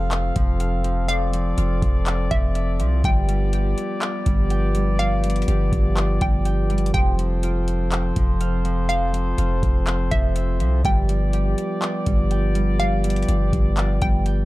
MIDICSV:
0, 0, Header, 1, 6, 480
1, 0, Start_track
1, 0, Tempo, 487805
1, 1073, Time_signature, 4, 2, 24, 8
1, 14219, End_track
2, 0, Start_track
2, 0, Title_t, "Synth pluck"
2, 0, Program_c, 0, 84
2, 1067, Note_on_c, 0, 77, 117
2, 2231, Note_off_c, 0, 77, 0
2, 2273, Note_on_c, 0, 76, 93
2, 2953, Note_off_c, 0, 76, 0
2, 3001, Note_on_c, 0, 79, 108
2, 3917, Note_off_c, 0, 79, 0
2, 4911, Note_on_c, 0, 77, 107
2, 6072, Note_off_c, 0, 77, 0
2, 6117, Note_on_c, 0, 79, 84
2, 6343, Note_off_c, 0, 79, 0
2, 6829, Note_on_c, 0, 79, 108
2, 7751, Note_off_c, 0, 79, 0
2, 8747, Note_on_c, 0, 77, 117
2, 9910, Note_off_c, 0, 77, 0
2, 9952, Note_on_c, 0, 76, 94
2, 10633, Note_off_c, 0, 76, 0
2, 10680, Note_on_c, 0, 79, 105
2, 11597, Note_off_c, 0, 79, 0
2, 12591, Note_on_c, 0, 77, 105
2, 13752, Note_off_c, 0, 77, 0
2, 13794, Note_on_c, 0, 79, 89
2, 14022, Note_off_c, 0, 79, 0
2, 14219, End_track
3, 0, Start_track
3, 0, Title_t, "Brass ensemble"
3, 0, Program_c, 1, 61
3, 0, Note_on_c, 1, 53, 75
3, 0, Note_on_c, 1, 60, 71
3, 0, Note_on_c, 1, 69, 69
3, 0, Note_on_c, 1, 77, 82
3, 1055, Note_off_c, 1, 77, 0
3, 1073, Note_on_c, 1, 74, 85
3, 2955, Note_off_c, 1, 69, 0
3, 2956, Note_off_c, 1, 60, 0
3, 2973, Note_off_c, 1, 74, 0
3, 2994, Note_on_c, 1, 74, 88
3, 2995, Note_on_c, 1, 59, 72
3, 2995, Note_on_c, 1, 67, 68
3, 6795, Note_off_c, 1, 59, 0
3, 6795, Note_off_c, 1, 67, 0
3, 6795, Note_off_c, 1, 74, 0
3, 6830, Note_on_c, 1, 69, 69
3, 6830, Note_on_c, 1, 72, 81
3, 6832, Note_on_c, 1, 60, 69
3, 10633, Note_off_c, 1, 69, 0
3, 10633, Note_off_c, 1, 72, 0
3, 10634, Note_off_c, 1, 53, 0
3, 10634, Note_off_c, 1, 60, 0
3, 10669, Note_on_c, 1, 74, 83
3, 10670, Note_on_c, 1, 53, 77
3, 10670, Note_on_c, 1, 59, 73
3, 10671, Note_on_c, 1, 67, 69
3, 14219, Note_off_c, 1, 53, 0
3, 14219, Note_off_c, 1, 59, 0
3, 14219, Note_off_c, 1, 67, 0
3, 14219, Note_off_c, 1, 74, 0
3, 14219, End_track
4, 0, Start_track
4, 0, Title_t, "Harp"
4, 0, Program_c, 2, 46
4, 0, Note_on_c, 2, 53, 75
4, 0, Note_on_c, 2, 65, 84
4, 0, Note_on_c, 2, 79, 93
4, 199, Note_off_c, 2, 79, 0
4, 342, Note_off_c, 2, 53, 0
4, 353, Note_on_c, 2, 53, 77
4, 593, Note_on_c, 2, 77, 86
4, 815, Note_off_c, 2, 53, 0
4, 827, Note_on_c, 2, 53, 82
4, 1058, Note_off_c, 2, 53, 0
4, 1069, Note_on_c, 2, 53, 90
4, 1306, Note_off_c, 2, 53, 0
4, 1317, Note_on_c, 2, 53, 74
4, 1548, Note_off_c, 2, 65, 0
4, 1552, Note_on_c, 2, 65, 78
4, 2231, Note_off_c, 2, 77, 0
4, 2265, Note_off_c, 2, 53, 0
4, 2277, Note_on_c, 2, 53, 75
4, 2512, Note_on_c, 2, 76, 87
4, 2742, Note_off_c, 2, 53, 0
4, 2754, Note_on_c, 2, 53, 81
4, 2993, Note_on_c, 2, 55, 87
4, 3042, Note_off_c, 2, 53, 0
4, 3223, Note_off_c, 2, 55, 0
4, 3235, Note_on_c, 2, 55, 77
4, 3474, Note_on_c, 2, 67, 92
4, 4034, Note_off_c, 2, 65, 0
4, 4181, Note_off_c, 2, 55, 0
4, 4193, Note_on_c, 2, 55, 80
4, 4207, Note_off_c, 2, 76, 0
4, 4434, Note_on_c, 2, 79, 98
4, 4656, Note_off_c, 2, 55, 0
4, 4668, Note_on_c, 2, 55, 76
4, 4899, Note_off_c, 2, 55, 0
4, 4911, Note_on_c, 2, 55, 93
4, 5143, Note_off_c, 2, 55, 0
4, 5155, Note_on_c, 2, 55, 76
4, 5394, Note_off_c, 2, 67, 0
4, 5398, Note_on_c, 2, 67, 88
4, 5962, Note_off_c, 2, 79, 0
4, 6099, Note_off_c, 2, 55, 0
4, 6110, Note_on_c, 2, 55, 79
4, 6351, Note_on_c, 2, 79, 91
4, 6580, Note_off_c, 2, 55, 0
4, 6591, Note_on_c, 2, 55, 78
4, 6833, Note_on_c, 2, 53, 92
4, 6882, Note_off_c, 2, 55, 0
4, 7059, Note_off_c, 2, 53, 0
4, 7071, Note_on_c, 2, 53, 74
4, 7314, Note_on_c, 2, 65, 84
4, 7715, Note_off_c, 2, 67, 0
4, 7879, Note_off_c, 2, 79, 0
4, 8022, Note_off_c, 2, 53, 0
4, 8034, Note_on_c, 2, 53, 78
4, 8272, Note_on_c, 2, 77, 88
4, 8496, Note_off_c, 2, 53, 0
4, 8508, Note_on_c, 2, 53, 80
4, 8739, Note_off_c, 2, 53, 0
4, 8751, Note_on_c, 2, 53, 92
4, 8987, Note_off_c, 2, 53, 0
4, 8998, Note_on_c, 2, 53, 74
4, 9229, Note_off_c, 2, 65, 0
4, 9233, Note_on_c, 2, 65, 81
4, 9910, Note_off_c, 2, 77, 0
4, 9945, Note_off_c, 2, 53, 0
4, 9957, Note_on_c, 2, 53, 70
4, 10192, Note_on_c, 2, 76, 91
4, 10421, Note_off_c, 2, 53, 0
4, 10433, Note_on_c, 2, 53, 77
4, 10672, Note_on_c, 2, 55, 83
4, 10722, Note_off_c, 2, 53, 0
4, 10903, Note_off_c, 2, 55, 0
4, 10915, Note_on_c, 2, 55, 80
4, 11154, Note_on_c, 2, 67, 88
4, 11715, Note_off_c, 2, 65, 0
4, 11861, Note_off_c, 2, 55, 0
4, 11873, Note_on_c, 2, 55, 80
4, 11887, Note_off_c, 2, 76, 0
4, 12114, Note_on_c, 2, 79, 96
4, 12336, Note_off_c, 2, 55, 0
4, 12348, Note_on_c, 2, 55, 78
4, 12578, Note_off_c, 2, 55, 0
4, 12590, Note_on_c, 2, 55, 100
4, 12822, Note_off_c, 2, 55, 0
4, 12833, Note_on_c, 2, 55, 80
4, 13074, Note_off_c, 2, 67, 0
4, 13078, Note_on_c, 2, 67, 90
4, 13642, Note_off_c, 2, 79, 0
4, 13780, Note_off_c, 2, 55, 0
4, 13792, Note_on_c, 2, 55, 78
4, 14032, Note_on_c, 2, 79, 94
4, 14219, Note_off_c, 2, 55, 0
4, 14219, Note_off_c, 2, 67, 0
4, 14219, Note_off_c, 2, 79, 0
4, 14219, End_track
5, 0, Start_track
5, 0, Title_t, "808-style bass"
5, 0, Program_c, 3, 38
5, 0, Note_on_c, 3, 29, 108
5, 313, Note_off_c, 3, 29, 0
5, 354, Note_on_c, 3, 29, 98
5, 1514, Note_off_c, 3, 29, 0
5, 1552, Note_on_c, 3, 29, 105
5, 1783, Note_off_c, 3, 29, 0
5, 1792, Note_on_c, 3, 29, 97
5, 2253, Note_off_c, 3, 29, 0
5, 2275, Note_on_c, 3, 29, 102
5, 2752, Note_on_c, 3, 36, 100
5, 2767, Note_off_c, 3, 29, 0
5, 2980, Note_off_c, 3, 36, 0
5, 2993, Note_on_c, 3, 31, 114
5, 3684, Note_off_c, 3, 31, 0
5, 4195, Note_on_c, 3, 31, 95
5, 5355, Note_off_c, 3, 31, 0
5, 5392, Note_on_c, 3, 31, 110
5, 5623, Note_off_c, 3, 31, 0
5, 5633, Note_on_c, 3, 31, 99
5, 6094, Note_off_c, 3, 31, 0
5, 6114, Note_on_c, 3, 31, 99
5, 6805, Note_off_c, 3, 31, 0
5, 6832, Note_on_c, 3, 29, 115
5, 7993, Note_off_c, 3, 29, 0
5, 8034, Note_on_c, 3, 29, 98
5, 9194, Note_off_c, 3, 29, 0
5, 9231, Note_on_c, 3, 29, 106
5, 9462, Note_off_c, 3, 29, 0
5, 9473, Note_on_c, 3, 29, 97
5, 9934, Note_off_c, 3, 29, 0
5, 9956, Note_on_c, 3, 29, 98
5, 10431, Note_on_c, 3, 36, 99
5, 10446, Note_off_c, 3, 29, 0
5, 10660, Note_off_c, 3, 36, 0
5, 10673, Note_on_c, 3, 31, 112
5, 11364, Note_off_c, 3, 31, 0
5, 11875, Note_on_c, 3, 31, 100
5, 13034, Note_off_c, 3, 31, 0
5, 13072, Note_on_c, 3, 31, 104
5, 13303, Note_off_c, 3, 31, 0
5, 13313, Note_on_c, 3, 31, 104
5, 13773, Note_off_c, 3, 31, 0
5, 13794, Note_on_c, 3, 31, 100
5, 14219, Note_off_c, 3, 31, 0
5, 14219, End_track
6, 0, Start_track
6, 0, Title_t, "Drums"
6, 110, Note_on_c, 9, 42, 68
6, 113, Note_on_c, 9, 39, 114
6, 209, Note_off_c, 9, 42, 0
6, 211, Note_off_c, 9, 39, 0
6, 352, Note_on_c, 9, 42, 76
6, 355, Note_on_c, 9, 36, 85
6, 450, Note_off_c, 9, 42, 0
6, 453, Note_off_c, 9, 36, 0
6, 591, Note_on_c, 9, 42, 70
6, 689, Note_off_c, 9, 42, 0
6, 831, Note_on_c, 9, 42, 64
6, 929, Note_off_c, 9, 42, 0
6, 1072, Note_on_c, 9, 42, 84
6, 1171, Note_off_c, 9, 42, 0
6, 1313, Note_on_c, 9, 42, 75
6, 1412, Note_off_c, 9, 42, 0
6, 1552, Note_on_c, 9, 42, 82
6, 1650, Note_off_c, 9, 42, 0
6, 1792, Note_on_c, 9, 36, 96
6, 1795, Note_on_c, 9, 42, 68
6, 1890, Note_off_c, 9, 36, 0
6, 1894, Note_off_c, 9, 42, 0
6, 2031, Note_on_c, 9, 42, 69
6, 2033, Note_on_c, 9, 39, 114
6, 2129, Note_off_c, 9, 42, 0
6, 2131, Note_off_c, 9, 39, 0
6, 2273, Note_on_c, 9, 42, 75
6, 2275, Note_on_c, 9, 36, 89
6, 2371, Note_off_c, 9, 42, 0
6, 2373, Note_off_c, 9, 36, 0
6, 2512, Note_on_c, 9, 42, 73
6, 2610, Note_off_c, 9, 42, 0
6, 2752, Note_on_c, 9, 42, 69
6, 2850, Note_off_c, 9, 42, 0
6, 2993, Note_on_c, 9, 36, 127
6, 2993, Note_on_c, 9, 42, 86
6, 3091, Note_off_c, 9, 36, 0
6, 3092, Note_off_c, 9, 42, 0
6, 3234, Note_on_c, 9, 42, 75
6, 3332, Note_off_c, 9, 42, 0
6, 3474, Note_on_c, 9, 42, 87
6, 3572, Note_off_c, 9, 42, 0
6, 3716, Note_on_c, 9, 42, 68
6, 3815, Note_off_c, 9, 42, 0
6, 3951, Note_on_c, 9, 42, 68
6, 3953, Note_on_c, 9, 39, 117
6, 4049, Note_off_c, 9, 42, 0
6, 4052, Note_off_c, 9, 39, 0
6, 4193, Note_on_c, 9, 42, 77
6, 4195, Note_on_c, 9, 36, 84
6, 4291, Note_off_c, 9, 42, 0
6, 4294, Note_off_c, 9, 36, 0
6, 4431, Note_on_c, 9, 42, 72
6, 4530, Note_off_c, 9, 42, 0
6, 4672, Note_on_c, 9, 42, 65
6, 4770, Note_off_c, 9, 42, 0
6, 4913, Note_on_c, 9, 42, 90
6, 5011, Note_off_c, 9, 42, 0
6, 5153, Note_on_c, 9, 42, 79
6, 5213, Note_off_c, 9, 42, 0
6, 5213, Note_on_c, 9, 42, 66
6, 5272, Note_off_c, 9, 42, 0
6, 5272, Note_on_c, 9, 42, 54
6, 5333, Note_off_c, 9, 42, 0
6, 5333, Note_on_c, 9, 42, 45
6, 5393, Note_off_c, 9, 42, 0
6, 5393, Note_on_c, 9, 42, 87
6, 5491, Note_off_c, 9, 42, 0
6, 5632, Note_on_c, 9, 36, 94
6, 5636, Note_on_c, 9, 42, 67
6, 5731, Note_off_c, 9, 36, 0
6, 5734, Note_off_c, 9, 42, 0
6, 5871, Note_on_c, 9, 42, 67
6, 5874, Note_on_c, 9, 39, 123
6, 5970, Note_off_c, 9, 42, 0
6, 5972, Note_off_c, 9, 39, 0
6, 6112, Note_on_c, 9, 42, 79
6, 6115, Note_on_c, 9, 36, 88
6, 6211, Note_off_c, 9, 42, 0
6, 6213, Note_off_c, 9, 36, 0
6, 6351, Note_on_c, 9, 42, 72
6, 6449, Note_off_c, 9, 42, 0
6, 6592, Note_on_c, 9, 42, 41
6, 6671, Note_off_c, 9, 42, 0
6, 6671, Note_on_c, 9, 42, 55
6, 6752, Note_off_c, 9, 42, 0
6, 6752, Note_on_c, 9, 42, 67
6, 6831, Note_off_c, 9, 42, 0
6, 6831, Note_on_c, 9, 42, 83
6, 6832, Note_on_c, 9, 36, 127
6, 6930, Note_off_c, 9, 36, 0
6, 6930, Note_off_c, 9, 42, 0
6, 7074, Note_on_c, 9, 42, 74
6, 7173, Note_off_c, 9, 42, 0
6, 7312, Note_on_c, 9, 42, 84
6, 7410, Note_off_c, 9, 42, 0
6, 7555, Note_on_c, 9, 42, 66
6, 7653, Note_off_c, 9, 42, 0
6, 7791, Note_on_c, 9, 42, 69
6, 7793, Note_on_c, 9, 39, 118
6, 7889, Note_off_c, 9, 42, 0
6, 7891, Note_off_c, 9, 39, 0
6, 8032, Note_on_c, 9, 42, 78
6, 8035, Note_on_c, 9, 36, 87
6, 8130, Note_off_c, 9, 42, 0
6, 8133, Note_off_c, 9, 36, 0
6, 8272, Note_on_c, 9, 42, 71
6, 8370, Note_off_c, 9, 42, 0
6, 8511, Note_on_c, 9, 42, 62
6, 8610, Note_off_c, 9, 42, 0
6, 8753, Note_on_c, 9, 42, 89
6, 8852, Note_off_c, 9, 42, 0
6, 8994, Note_on_c, 9, 42, 77
6, 9092, Note_off_c, 9, 42, 0
6, 9233, Note_on_c, 9, 42, 85
6, 9331, Note_off_c, 9, 42, 0
6, 9473, Note_on_c, 9, 36, 93
6, 9476, Note_on_c, 9, 42, 66
6, 9571, Note_off_c, 9, 36, 0
6, 9574, Note_off_c, 9, 42, 0
6, 9711, Note_on_c, 9, 42, 72
6, 9714, Note_on_c, 9, 39, 114
6, 9809, Note_off_c, 9, 42, 0
6, 9812, Note_off_c, 9, 39, 0
6, 9953, Note_on_c, 9, 42, 79
6, 9955, Note_on_c, 9, 36, 89
6, 10051, Note_off_c, 9, 42, 0
6, 10054, Note_off_c, 9, 36, 0
6, 10191, Note_on_c, 9, 42, 76
6, 10290, Note_off_c, 9, 42, 0
6, 10432, Note_on_c, 9, 42, 66
6, 10531, Note_off_c, 9, 42, 0
6, 10673, Note_on_c, 9, 36, 123
6, 10673, Note_on_c, 9, 42, 85
6, 10771, Note_off_c, 9, 36, 0
6, 10772, Note_off_c, 9, 42, 0
6, 10913, Note_on_c, 9, 42, 76
6, 11012, Note_off_c, 9, 42, 0
6, 11152, Note_on_c, 9, 42, 82
6, 11250, Note_off_c, 9, 42, 0
6, 11395, Note_on_c, 9, 42, 65
6, 11493, Note_off_c, 9, 42, 0
6, 11631, Note_on_c, 9, 42, 72
6, 11633, Note_on_c, 9, 39, 124
6, 11729, Note_off_c, 9, 42, 0
6, 11731, Note_off_c, 9, 39, 0
6, 11871, Note_on_c, 9, 42, 75
6, 11875, Note_on_c, 9, 36, 86
6, 11970, Note_off_c, 9, 42, 0
6, 11973, Note_off_c, 9, 36, 0
6, 12111, Note_on_c, 9, 42, 73
6, 12209, Note_off_c, 9, 42, 0
6, 12352, Note_on_c, 9, 42, 65
6, 12450, Note_off_c, 9, 42, 0
6, 12592, Note_on_c, 9, 42, 86
6, 12690, Note_off_c, 9, 42, 0
6, 12832, Note_on_c, 9, 42, 78
6, 12891, Note_off_c, 9, 42, 0
6, 12891, Note_on_c, 9, 42, 64
6, 12953, Note_off_c, 9, 42, 0
6, 12953, Note_on_c, 9, 42, 54
6, 13013, Note_off_c, 9, 42, 0
6, 13013, Note_on_c, 9, 42, 42
6, 13073, Note_off_c, 9, 42, 0
6, 13073, Note_on_c, 9, 42, 83
6, 13171, Note_off_c, 9, 42, 0
6, 13312, Note_on_c, 9, 36, 89
6, 13315, Note_on_c, 9, 42, 69
6, 13411, Note_off_c, 9, 36, 0
6, 13413, Note_off_c, 9, 42, 0
6, 13550, Note_on_c, 9, 42, 69
6, 13553, Note_on_c, 9, 39, 117
6, 13648, Note_off_c, 9, 42, 0
6, 13651, Note_off_c, 9, 39, 0
6, 13792, Note_on_c, 9, 42, 77
6, 13795, Note_on_c, 9, 36, 88
6, 13890, Note_off_c, 9, 42, 0
6, 13893, Note_off_c, 9, 36, 0
6, 14030, Note_on_c, 9, 42, 70
6, 14128, Note_off_c, 9, 42, 0
6, 14219, End_track
0, 0, End_of_file